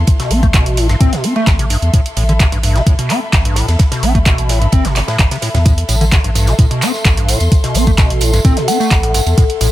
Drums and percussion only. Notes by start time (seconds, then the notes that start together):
0.07 kick, closed hi-hat, ride
0.20 snare, closed hi-hat
0.30 open hi-hat, ride
0.43 kick, closed hi-hat
0.54 kick, snare, clap, closed hi-hat, ride
0.66 closed hi-hat
0.77 open hi-hat, ride
0.89 snare, closed hi-hat
1.00 kick, closed hi-hat, ride
1.13 snare, closed hi-hat
1.24 open hi-hat, ride
1.36 ride
1.47 kick, snare, clap, closed hi-hat, ride
1.59 closed hi-hat, ride
1.70 open hi-hat, ride
1.82 closed hi-hat, ride
1.93 kick, closed hi-hat, ride
2.06 closed hi-hat
2.17 open hi-hat, ride
2.29 closed hi-hat
2.39 kick, snare, clap, closed hi-hat, ride
2.52 closed hi-hat
2.63 open hi-hat, ride
2.76 snare, closed hi-hat
2.86 kick, closed hi-hat, ride
2.99 closed hi-hat
3.10 clap, open hi-hat
3.33 kick, snare, clap, closed hi-hat, ride
3.45 closed hi-hat
3.56 snare, open hi-hat, ride
3.68 snare, closed hi-hat, ride
3.79 kick, snare, closed hi-hat, ride
3.92 snare, closed hi-hat, ride
4.03 open hi-hat, ride
4.15 kick, closed hi-hat
4.26 kick, snare, clap, closed hi-hat, ride
4.38 closed hi-hat
4.49 snare, open hi-hat, ride
4.62 closed hi-hat
4.72 kick, closed hi-hat, ride
4.85 snare, closed hi-hat
4.96 snare, clap, open hi-hat, ride
5.08 snare, ride
5.19 kick, snare, clap, closed hi-hat, ride
5.31 snare, closed hi-hat, ride
5.42 snare, open hi-hat, ride
5.54 snare, closed hi-hat, ride
5.65 kick, closed hi-hat, ride, tambourine
5.78 closed hi-hat
5.89 open hi-hat, ride, tambourine
6.01 closed hi-hat, tambourine
6.12 kick, snare, clap, closed hi-hat, ride
6.24 closed hi-hat
6.35 open hi-hat, ride, tambourine
6.47 snare, closed hi-hat, tambourine
6.58 kick, closed hi-hat, ride, tambourine
6.71 closed hi-hat
6.82 clap, open hi-hat, ride, tambourine
6.94 snare, tambourine
7.05 kick, snare, clap, closed hi-hat, ride
7.17 closed hi-hat
7.28 snare, open hi-hat, ride, tambourine
7.40 closed hi-hat, ride, tambourine
7.52 kick, closed hi-hat, ride, tambourine
7.64 snare, closed hi-hat
7.74 open hi-hat, ride, tambourine
7.87 kick, closed hi-hat, tambourine
7.98 kick, snare, clap, closed hi-hat, ride, tambourine
8.10 closed hi-hat
8.21 open hi-hat, ride, tambourine
8.33 snare, closed hi-hat, tambourine
8.45 kick, closed hi-hat, ride
8.57 snare, closed hi-hat
8.68 open hi-hat, ride, tambourine
8.80 ride, tambourine
8.91 kick, snare, clap, closed hi-hat, ride, tambourine
9.03 closed hi-hat, ride
9.14 open hi-hat, ride, tambourine
9.27 closed hi-hat, ride, tambourine
9.37 kick, closed hi-hat, ride, tambourine
9.50 closed hi-hat
9.61 open hi-hat, ride, tambourine